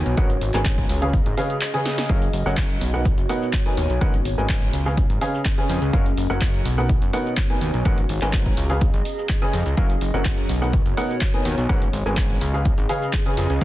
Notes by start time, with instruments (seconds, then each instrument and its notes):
Already playing: upright piano B2 D#4 A#4 B4 G#5, ambient pad B3 F#4 C#5
0.06 analog synth bass B1, closed hi-hat
0.17 analog synth bass G#1, upright piano G#3 C#4 A#4 B4 F#5, ambient pad G#4, kick, closed hi-hat
0.30 closed hi-hat
0.41 analog synth bass G#1, open hi-hat
0.50 analog synth bass G#1, upright piano G#3 C#4 A#4 B4 G#5, ambient pad D#5 A#5, clap, closed hi-hat
0.65 kick, clap, closed hi-hat
0.78 kick, closed hi-hat
0.89 analog synth bass C#2, ambient pad C#4, open hi-hat
1.02 upright piano C#3 C#4 G#4 B4 F5, closed hi-hat
1.13 kick, closed hi-hat
1.26 analog synth bass G#1, closed hi-hat
1.37 upright piano C#3 C#4 G#4 B4 F5, open hi-hat
1.50 closed hi-hat
1.61 clap, closed hi-hat
1.74 upright piano C#3 C#4 G#4 B4 G#5, closed hi-hat
1.85 snare, open hi-hat
1.98 snare, closed hi-hat
2.09 analog synth bass F#1, upright piano F#3 C#4 F#4 A#4 F5, ambient pad F#4, kick, closed hi-hat, cabasa
2.15 ambient pad C#5
2.22 closed hi-hat, cabasa
2.33 analog synth bass F#1, open hi-hat
2.42 analog synth bass F#1, upright piano F#3 C#4 F#4 A#4 F#5, ambient pad G#5
2.46 cabasa
2.57 kick, clap, closed hi-hat, cabasa
2.70 closed hi-hat, cabasa
2.81 analog synth bass B1, ambient pad B3, open hi-hat
2.94 upright piano B2 D#4 A#4 B4 F#5, cabasa
3.05 kick, closed hi-hat, cabasa
3.18 analog synth bass F#1, closed hi-hat, cabasa
3.29 upright piano B2 D#4 A#4 B4 F#5, open hi-hat
3.42 cabasa
3.53 kick, clap, closed hi-hat, cabasa
3.66 upright piano B2 D#4 A#4 B4 G#5, closed hi-hat, cabasa
3.77 analog synth bass D#2, open hi-hat
3.90 analog synth bass B1, closed hi-hat, cabasa
4.01 analog synth bass G#1, upright piano G#3 C#4 A#4 B4 F#5, ambient pad G#4, kick, closed hi-hat, cabasa
4.14 closed hi-hat, cabasa
4.25 analog synth bass G#1, ambient pad D#5, open hi-hat
4.34 analog synth bass G#1, upright piano G#3 C#4 A#4 B4 G#5, ambient pad A#5
4.38 cabasa
4.49 kick, clap, closed hi-hat, cabasa
4.62 closed hi-hat, cabasa
4.73 analog synth bass C#2, ambient pad C#4, open hi-hat
4.86 upright piano C#3 C#4 G#4 B4 F5, cabasa
4.97 kick, closed hi-hat, cabasa
5.10 analog synth bass G#1, closed hi-hat, cabasa
5.21 upright piano C#3 C#4 G#4 B4 F5, open hi-hat
5.34 cabasa
5.45 kick, clap, closed hi-hat, cabasa
5.58 upright piano C#3 C#4 G#4 B4 G#5, closed hi-hat, cabasa
5.69 analog synth bass F2, open hi-hat
5.82 analog synth bass C#2, closed hi-hat, cabasa
5.93 analog synth bass F#1, upright piano F#3 C#4 F#4 A#4 F5, ambient pad F#4, kick, closed hi-hat, cabasa
6.04 ambient pad G#5, closed hi-hat, cabasa
6.17 analog synth bass F#1, open hi-hat
6.26 analog synth bass F#1, upright piano F#3 C#4 F#4 A#4 F#5, ambient pad C#5
6.31 cabasa
6.41 kick, clap, closed hi-hat, cabasa
6.54 closed hi-hat, cabasa
6.65 analog synth bass B1, ambient pad B3, open hi-hat
6.78 upright piano B2 D#4 A#4 B4 F#5, cabasa
6.89 kick, closed hi-hat, cabasa
7.02 analog synth bass F#1, closed hi-hat, cabasa
7.13 upright piano B2 D#4 A#4 B4 F#5, open hi-hat
7.26 cabasa
7.37 kick, clap, closed hi-hat, cabasa
7.50 upright piano B2 D#4 A#4 B4 G#5, closed hi-hat, cabasa
7.61 analog synth bass D#2, open hi-hat
7.74 analog synth bass B1, closed hi-hat, cabasa
7.85 analog synth bass G#1, upright piano G#3 C#4 A#4 B4 F#5, ambient pad G#4, kick, closed hi-hat, cabasa
7.98 closed hi-hat, cabasa
8.09 analog synth bass G#1, open hi-hat
8.13 ambient pad D#5
8.18 analog synth bass G#1, upright piano G#3 C#4 A#4 B4 G#5, ambient pad A#5, clap, cabasa
8.33 kick, clap, closed hi-hat, cabasa
8.46 kick, closed hi-hat, cabasa
8.57 analog synth bass C#2, ambient pad C#4, open hi-hat
8.70 upright piano C#3 C#4 G#4 B4 F5, closed hi-hat, cabasa
8.81 kick, closed hi-hat, cabasa
8.94 analog synth bass G#1, closed hi-hat, cabasa
9.05 open hi-hat
9.18 cabasa
9.29 kick, clap, closed hi-hat, cabasa
9.42 upright piano C#3 C#4 G#4 B4 G#5, closed hi-hat, cabasa
9.53 analog synth bass F2, open hi-hat
9.66 analog synth bass C#2, closed hi-hat, cabasa
9.77 analog synth bass F#1, upright piano F#3 C#4 F#4 A#4 F5, ambient pad F#4, kick, closed hi-hat, cabasa
9.90 closed hi-hat, cabasa
9.97 analog synth bass F#1, ambient pad G#5, open hi-hat
10.06 ambient pad C#5
10.14 analog synth bass F#1, upright piano F#3 C#4 F#4 A#4 F#5, cabasa
10.25 kick, clap, closed hi-hat, cabasa
10.38 closed hi-hat, cabasa
10.49 analog synth bass B1, ambient pad B3, open hi-hat
10.62 upright piano B2 D#4 A#4 B4 F#5, cabasa
10.73 kick, closed hi-hat, cabasa
10.86 analog synth bass F#1, closed hi-hat, cabasa
10.97 upright piano B2 D#4 A#4 B4 F#5, open hi-hat
11.10 cabasa
11.21 kick, clap, closed hi-hat, cabasa
11.34 upright piano B2 D#4 A#4 B4 G#5, closed hi-hat, cabasa
11.45 analog synth bass D#2, open hi-hat
11.58 analog synth bass B1, closed hi-hat, cabasa
11.69 analog synth bass G#1, upright piano G#3 C#4 A#4 B4 F#5, ambient pad G#4, kick, closed hi-hat, cabasa
11.82 closed hi-hat, cabasa
11.89 ambient pad D#5
11.93 analog synth bass G#1, open hi-hat
12.02 analog synth bass G#1, upright piano G#3 C#4 A#4 B4 G#5, ambient pad A#5
12.06 cabasa
12.17 kick, clap, closed hi-hat, cabasa
12.30 closed hi-hat, cabasa
12.41 analog synth bass C#2, ambient pad C#4, open hi-hat
12.54 upright piano C#3 C#4 G#4 B4 F5, cabasa
12.65 kick, closed hi-hat, cabasa
12.78 analog synth bass G#1, closed hi-hat, cabasa
12.89 upright piano C#3 C#4 G#4 B4 F5, open hi-hat
13.02 cabasa
13.13 kick, clap, closed hi-hat, cabasa
13.26 upright piano C#3 C#4 G#4 B4 G#5, closed hi-hat, cabasa
13.37 analog synth bass F2, open hi-hat
13.50 analog synth bass C#2, closed hi-hat, cabasa